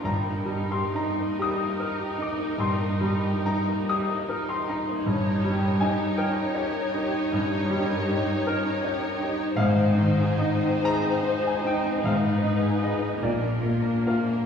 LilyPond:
<<
  \new Staff \with { instrumentName = "Violin section" } { \time 12/8 \key ees \major \tempo 4. = 51 bes'1. | des''1. | c''2. ces''4. bes'4. | }
  \new Staff \with { instrumentName = "Grand piano" } { \time 12/8 \key ees \major << { bes''8. c'''16 bes''8 ees'''4 d'''8 c'''4 bes''8 ees'''8. c'''16 bes''8~ | bes''4 aes''8 g''2~ g''8 r2 | f''4 ees''8 bes''8. aes''16 g''8 f''4 ees''8 d''4 f''8 | } \\ { g,8 g8 ees'8 g'8 bes'8 ees'8 g,8 g8 ees'8 g'8 bes'8 ees'8 | g,8 g8 ees'8 bes'8 des''8 ees'8 g,8 g8 ees'8 bes'8 des''8 ees'8 | aes,8 ees8 ees'8 aes'8 c''8 ees'8 aes,8 ees'8 <aes' ces''>8 bes,8 bes8 <f' bes'>8 | } >> }
  \new Staff \with { instrumentName = "Viola section" } { \time 12/8 \key ees \major ees'1. | ees'1. | ees'1~ ees'8 bes4. | }
  \new Staff \with { instrumentName = "Violin section" } { \time 12/8 \key ees \major g16 bes16 ees'16 g'16 ees'16 bes16 g16 bes16 ees'16 g'16 ees'16 bes16 g16 bes16 ees'16 g'16 ees'16 bes16 g16 bes16 ees'16 g'16 ees'16 bes16 | des'16 ees'16 g'16 bes'16 g'16 ees'16 des'16 ees'16 g'16 bes'16 g'16 ees'16 des'16 ees'16 g'16 bes'16 g'16 ees'16 des'16 ees'16 g'16 bes'16 g'16 ees'16 | aes16 c'16 ees'16 aes'16 ees'16 c'16 aes16 c'16 ees'16 aes'16 ees'16 c'16 aes16 ces'16 ees'16 aes'16 ees'16 ces'16 bes16 d'16 f'16 d'16 bes16 d'16 | }
  \new Staff \with { instrumentName = "Cello section" } { \clef bass \time 12/8 \key ees \major g,4. r4. g,4. r4. | g,4. r4. g,4. r4. | aes,4. r4. aes,4. bes,4. | }
  \new Staff \with { instrumentName = "Double bass section" } { \clef bass \time 12/8 \key ees \major g,,4 r1 r4 | g,,4 r1 r4 | aes,,4 r2 aes,,4 r8 bes,,4 r8 | }
>>